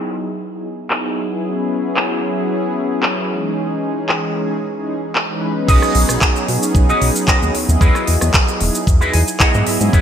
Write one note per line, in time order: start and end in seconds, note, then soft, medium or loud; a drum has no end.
0.11 0.27 F#3 medium
0.11 0.27 B3 medium
0.11 0.27 D#4 medium
0.11 0.28 E4 medium
0.11 0.28 G#4 medium
0.51 0.67 F#3 medium
0.51 0.67 B3 medium
0.51 0.67 D#4 medium
0.51 0.67 E4 medium
0.51 0.67 G#4 medium
0.90 1.28 F#3 medium
0.90 1.28 B3 medium
0.90 1.28 D#4 medium
0.90 1.28 E4 medium
0.90 1.28 G#4 medium
0.90 clap loud
1.31 2.20 F#3 medium
1.31 2.20 B3 medium
1.31 2.21 C#4 medium
1.31 2.21 E4 medium
1.31 2.21 G#4 loud
1.97 clap loud
2.23 3.26 F#3 medium
2.23 3.27 B3 medium
2.23 3.27 C#4 medium
2.23 3.27 E4 medium
2.23 3.27 G#4 loud
3.03 clap loud
3.28 4.32 E3 medium
3.28 4.33 G#3 medium
3.28 4.33 C#4 medium
3.28 4.33 D#4 medium
3.28 4.33 G#4 medium
4.09 clap loud
4.35 4.52 E3 medium
4.35 4.52 G#3 medium
4.35 4.52 C#4 medium
4.35 4.52 D#4 medium
4.35 4.52 G#4 medium
4.76 4.92 E3 medium
4.76 4.92 G#3 medium
4.76 4.92 C#4 medium
4.76 4.92 D#4 medium
4.76 4.92 G#4 medium
5.15 clap loud
5.29 5.52 E3 medium
5.29 5.52 G#3 medium
5.29 5.52 C#4 medium
5.29 5.52 D#4 medium
5.29 5.53 B4 medium
5.55 5.67 F#3 medium
5.55 5.67 B3 medium
5.55 5.67 C#4 medium
5.55 5.68 D#4 medium
5.55 5.69 G#4 loud
5.68 5.78 B1 loud
5.68 6.43 F#3 loud
5.68 6.43 B3 medium
5.68 6.43 C#4 medium
5.68 6.43 D#4 medium
5.68 6.02 F#4 loud
5.68 6.02 G#4 loud
5.68 6.44 G#4 loud
5.68 6.02 B4 medium
5.68 6.02 D#5 loud
5.68 kick loud
5.68 crash loud
5.68 cabasa medium
5.82 cross-stick medium
5.82 cabasa soft
5.95 6.05 B1 loud
5.95 open hi-hat loud
6.09 6.18 B1 loud
6.09 cross-stick medium
6.09 cabasa medium
6.22 kick loud
6.22 clap loud
6.22 cabasa medium
6.35 muted clean electric guitar stroke soft
6.35 cabasa soft
6.48 6.58 B2 loud
6.48 7.51 F#3 loud
6.48 7.51 B3 medium
6.48 7.52 C#4 medium
6.48 7.52 D#4 medium
6.48 7.52 G#4 loud
6.48 muted clean electric guitar stroke medium
6.48 open hi-hat medium
6.62 muted clean electric guitar stroke soft
6.62 cabasa medium
6.75 6.93 B1 medium
6.75 muted clean electric guitar stroke soft
6.75 kick loud
6.75 cabasa medium
6.89 7.08 F#4 loud
6.89 7.08 G#4 loud
6.89 7.08 B4 loud
6.89 7.09 D#5 loud
6.89 cabasa soft
7.02 7.11 B1 medium
7.02 open hi-hat loud
7.16 cabasa medium
7.28 7.54 F#4 medium
7.28 7.54 G#4 medium
7.28 7.55 B4 medium
7.28 7.55 D#5 medium
7.28 kick loud
7.28 clap loud
7.28 cabasa medium
7.42 7.51 D#2 medium
7.42 cabasa soft
7.54 7.66 D#2 soft
7.54 8.57 F#3 medium
7.54 8.58 B3 medium
7.54 8.58 E4 medium
7.54 8.58 G#4 medium
7.54 8.58 D#5 medium
7.54 open hi-hat medium
7.69 7.77 D#2 loud
7.69 cabasa medium
7.80 7.90 E2 medium
7.80 8.14 E4 loud
7.80 8.14 G#4 loud
7.80 8.14 B4 loud
7.80 8.14 D#5 loud
7.80 kick loud
7.80 cabasa medium
7.95 cross-stick medium
7.95 cabasa soft
8.07 8.17 E2 loud
8.07 open hi-hat loud
8.21 8.30 E2 loud
8.21 cross-stick medium
8.21 cabasa medium
8.34 kick loud
8.34 clap loud
8.34 cabasa medium
8.48 muted clean electric guitar stroke soft
8.48 cabasa soft
8.60 8.70 E1 loud
8.60 8.77 F#3 medium
8.60 8.77 B3 medium
8.60 8.77 D#4 medium
8.60 8.77 E4 medium
8.60 8.77 G#4 medium
8.60 muted clean electric guitar stroke medium
8.60 open hi-hat loud
8.74 muted clean electric guitar stroke soft
8.74 cabasa medium
8.87 9.01 E2 loud
8.87 muted clean electric guitar stroke soft
8.87 kick loud
8.87 cabasa medium
9.01 9.12 E2 soft
9.01 9.16 F#3 medium
9.01 9.16 B3 medium
9.01 9.17 D#4 medium
9.01 9.13 E4 loud
9.01 9.17 E4 medium
9.01 9.21 G#4 loud
9.01 9.17 G#4 medium
9.01 9.21 B4 loud
9.01 9.21 D#5 loud
9.01 cabasa soft
9.13 9.23 E2 medium
9.13 9.38 G#5 medium
9.13 open hi-hat loud
9.28 cabasa medium
9.40 9.77 F#3 medium
9.40 9.77 B3 medium
9.40 9.67 E4 medium
9.40 9.78 E4 medium
9.40 9.67 G#4 medium
9.40 9.78 G#4 loud
9.40 9.67 B4 medium
9.40 9.67 D#5 loud
9.40 9.77 D#5 medium
9.40 9.65 F#5 medium
9.40 kick loud
9.40 clap loud
9.40 cabasa medium
9.54 9.63 G#2 medium
9.54 cabasa soft
9.67 9.78 G#2 soft
9.67 9.92 E5 medium
9.67 open hi-hat loud
9.80 9.89 G#2 loud
9.80 10.01 F#3 loud
9.80 10.01 B3 medium
9.80 10.01 C#4 medium
9.80 10.01 E4 medium
9.80 10.01 G#4 loud
9.80 cabasa medium
9.93 10.01 F#2 loud
9.93 10.01 E4 loud
9.93 10.01 F#4 loud
9.93 10.01 B4 loud
9.93 10.01 C#5 loud
9.93 kick loud
9.93 cabasa medium